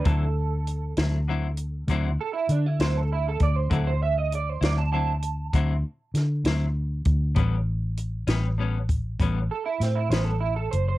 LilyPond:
<<
  \new Staff \with { instrumentName = "Clean electric guitar" } { \time 12/8 \key d \major \tempo 4. = 66 a'2. r8 a'16 e'16 d'16 e'16 c''16 a'16 e'16 a'16 d''16 c''16 | a'16 c''16 e''16 dis''16 d''16 c''16 d''16 a''16 a''2 r2 | r2. r8 a'16 e'16 c'16 e'16 c''16 a'16 e'16 a'16 c''16 c''16 | }
  \new Staff \with { instrumentName = "Clean electric guitar" } { \time 12/8 \key d \major <d fis c' e'>8 r4 <fis c' e'>8 <d fis c' e'>8 r8 <d fis c' e'>8 r4 <fis c' e'>8 r4 | <d fis c' e'>8 r4 <fis c' e'>8 <d fis c' e'>8 r8 <d fis c' e'>8 r4 <fis c' e'>8 r4 | <a, g b cis'>8 r4 <g b cis'>8 <a, g b cis'>8 r8 <a, g b cis'>8 r4 <g b cis'>8 r4 | }
  \new Staff \with { instrumentName = "Fingered electric bass" } { \clef bass \time 12/8 \key d \major d,4. d,4. d,8 r8 d8 d,4 d,8 | d,4. d,4. d,8 r8 d8 d,4 d,8 | a,,4. a,,4. a,,8 r8 a,8 a,,4 fis,,8 | }
  \new DrumStaff \with { instrumentName = "Drums" } \drummode { \time 12/8 <hh bd>4 hh8 <hh sn>4 hh8 <hh bd>4 hh8 <hh sn>4 <hh bd>8 | <hh bd>4 hh8 <hh sn>4 hh8 <hh bd>4 <hh sn>8 <hh sn>4 <hh bd>8 | <hh bd>4 hh8 <hh sn>4 <hh bd>8 <hh bd>4 <hh sn>8 <hh sn>4 hh8 | }
>>